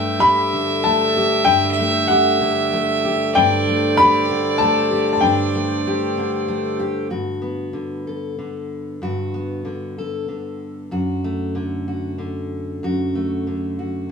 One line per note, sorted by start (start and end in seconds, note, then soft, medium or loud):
0.00 1.45 G2 medium
0.00 0.85 A3 medium
0.00 7.08 A3 medium
0.00 1.46 D4 medium
0.00 7.08 G4 medium
0.00 3.31 D5 medium
0.00 3.35 E5 loud
0.00 0.23 G5 loud
0.19 1.16 G4 medium
0.19 0.86 B5 loud
0.53 2.39 D3 medium
0.84 1.49 A3 medium
0.84 1.49 A5 medium
1.17 1.82 G4 medium
1.45 3.35 G2 medium
1.45 3.37 D4 medium
1.45 2.04 G5 loud
1.79 2.73 A3 medium
2.08 3.05 G4 medium
2.08 2.98 F#5 medium
2.41 4.29 D3 medium
2.73 3.39 A3 medium
3.05 3.71 G4 medium
3.34 5.22 G2 medium
3.34 5.22 D4 medium
3.34 7.08 C5 medium
3.34 6.80 D5 loud
3.34 3.94 G5 loud
3.68 4.61 A3 medium
3.97 4.91 G4 medium
3.97 4.62 B5 loud
4.30 6.16 D3 medium
4.58 5.11 A5 medium
4.62 5.20 A3 medium
4.91 5.58 G4 medium
5.13 5.21 A5 medium
5.21 7.08 G2 medium
5.21 7.08 D4 medium
5.21 6.44 G5 medium
5.55 6.47 A3 medium
5.87 6.78 G4 medium
6.17 7.72 D3 medium
6.48 7.08 A3 medium
6.79 7.08 G4 medium
7.10 8.97 G2 medium
7.10 8.07 F#4 medium
7.42 8.97 B3 soft
7.73 8.37 D3 medium
8.07 8.98 A4 soft
8.38 9.64 D3 medium
9.02 10.88 G2 medium
9.02 9.98 F#4 medium
9.34 10.89 B3 soft
9.65 10.27 D3 medium
9.98 10.89 A4 soft
10.28 11.54 D3 soft
10.91 12.78 F#2 medium
10.91 11.87 F#4 medium
11.24 12.79 A3 medium
11.55 12.17 D3 medium
11.88 12.84 F#4 soft
12.18 13.45 D3 medium
12.83 14.12 F#2 medium
12.83 13.78 F#4 medium
13.15 14.12 A3 medium
13.47 14.08 D3 medium
13.79 14.12 F#4 soft